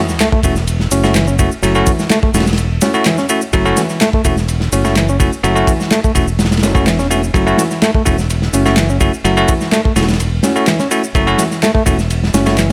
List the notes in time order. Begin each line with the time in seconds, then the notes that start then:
Already playing: E3, sub drop
0.09 snare, shaker
0.20 A3, snare, clap, ride, shaker
0.32 A3, kick
0.43 E1 A3 C#4 E4 F#4, kick, ride, shaker
0.56 snare, shaker
0.67 ride, shaker
0.80 snare
0.91 F#1 A3 C#4 E4 F#4, ride, shaker
1.04 A3 C#4 E4 F#4, snare, shaker
1.15 E3, snare, clap, ride, shaker
1.27 C#4, shaker
1.39 A3 C#4 E4 F#4, kick, ride, shaker
1.52 shaker
1.63 F#1 F#3 A3 C#4 E4 F#4, ride, shaker
1.75 A3 C#4 E4 F#4, shaker
1.87 E3, kick, ride, shaker
1.99 snare, shaker
2.10 A3, snare, clap, ride, shaker
2.23 A3, kick
2.34 E1 A3 C#4 E4 F#4, snare, ride, shaker
2.40 snare, ride
2.47 snare, ride, shaker
2.53 snare, ride
2.58 ride, shaker
2.81 A3 C#4 E4 F#4, snare, ride, shaker
2.94 A3 C#4 E4 F#4, ride, shaker
3.05 E3, snare, clap, ride, shaker
3.18 C#4, snare, shaker
3.29 A3 C#4 E4 F#4, ride, shaker
3.41 shaker
3.53 F#1 F#3 A3 C#4 E4 F#4, kick, ride, shaker
3.65 A3 C#4 E4 F#4, shaker
3.77 E3, snare, ride, shaker
3.89 snare, shaker
4.01 A3, snare, clap, ride, shaker
4.13 A3, kick
4.25 E1 A3 C#4 E4 F#4, kick, ride, shaker
4.37 snare, shaker
4.48 ride, shaker
4.60 snare
4.72 F#1 A3 C#4 E4 F#4, ride, shaker
4.85 A3 C#4 E4 F#4, snare, shaker
4.96 E3, snare, clap, ride, shaker
5.09 C#4, shaker
5.20 A3 C#4 E4 F#4, kick, ride, shaker
5.33 shaker
5.43 F#1 F#3 A3 C#4 E4 F#4, ride, shaker
5.56 A3 C#4 E4 F#4, shaker
5.67 E3, kick, ride, shaker
5.80 snare, shaker
5.91 A3, snare, clap, ride, shaker
6.04 A3, kick, shaker
6.15 E1 A3 C#4 E4 F#4, kick, ride, shaker
6.28 shaker
6.39 snare, ride, shaker
6.45 snare, ride
6.51 snare, ride, shaker
6.57 snare, ride
6.63 F#1 A3 C#4 E4 F#4, snare, ride, shaker
6.75 A3 C#4 E4 F#4, kick, shaker
6.87 E1 E3, snare, clap, ride, shaker
6.99 C#4, snare, shaker
7.11 A3 C#4 E4 F#4, ride, shaker
7.23 shaker
7.34 F#1 F#3 A3 C#4 E4 F#4, kick, ride, shaker
7.47 A3 C#4 E4 F#4, shaker
7.57 E3, snare, ride, shaker
7.71 snare, shaker
7.82 A3, snare, clap, ride, shaker
7.94 A3, kick
8.05 E1 A3 C#4 E4 F#4, kick, ride, shaker
8.18 snare, shaker
8.30 ride, shaker
8.42 snare
8.53 F#1 A3 C#4 E4 F#4, ride, shaker
8.65 A3 C#4 E4 F#4, snare, shaker
8.77 E3, snare, clap, ride, shaker
8.89 C#4, shaker
9.01 A3 C#4 E4 F#4, kick, ride, shaker
9.14 shaker
9.24 F#1 F#3 A3 C#4 E4 F#4, ride, shaker
9.37 A3 C#4 E4 F#4, shaker
9.48 E3, kick, ride, shaker
9.61 snare, shaker
9.72 A3, snare, clap, ride, shaker
9.85 A3, kick
9.96 E1 A3 C#4 E4 F#4, snare, ride, shaker
10.02 snare, ride
10.08 snare, ride, shaker
10.13 snare, ride
10.20 ride, shaker
10.43 A3 C#4 E4 F#4, snare, ride, shaker
10.56 A3 C#4 E4 F#4, ride, shaker
10.67 E3, snare, clap, ride, shaker
10.79 C#4, snare, shaker
10.91 A3 C#4 E4 F#4, ride, shaker
11.04 shaker
11.15 F#1 F#3 A3 C#4 E4 F#4, kick, ride, shaker
11.27 A3 C#4 E4 F#4, shaker
11.38 E3, snare, ride, shaker
11.51 snare, shaker
11.63 A3, snare, clap, ride, shaker
11.75 A3, kick
11.86 E1 A3 C#4 E4 F#4, kick, ride, shaker
11.99 snare, shaker
12.10 ride, shaker
12.24 snare
12.34 F#1 A3 C#4 E4 F#4, snare, ride, shaker
12.46 A3 C#4 E4 F#4, snare, ride, shaker
12.58 E3, snare, clap, ride, shaker